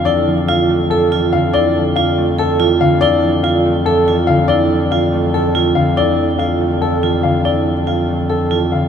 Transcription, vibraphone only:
X:1
M:7/8
L:1/8
Q:1/4=142
K:F
V:1 name="Vibraphone"
E z F z A F z | E z F z A F z | E z F z A F z | E z F z A F z |
E z F z A F z | E z F z A F z |]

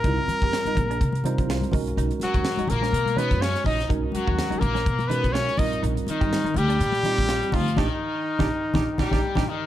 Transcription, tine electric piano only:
X:1
M:4/4
L:1/16
Q:"Swing 16ths" 1/4=124
K:Eb
V:1 name="Tine electric piano"
[G,CFB]6 z4 [G,CFc]4 [A,^C^F^A]2- | [A,^C^F^A]4 z6 [_A,CF^c]4- [A,CFc] z | [A,^C^F^A]6 z4 [_A,CF^A]4 [G,=C=FB]2- | [G,CFB]4 z6 [G,CFG]4- [G,CFG] z |
[DEG] z4 [DEG] z2 [DEG] z [DEG] [DEG] z [DEG] z2 |]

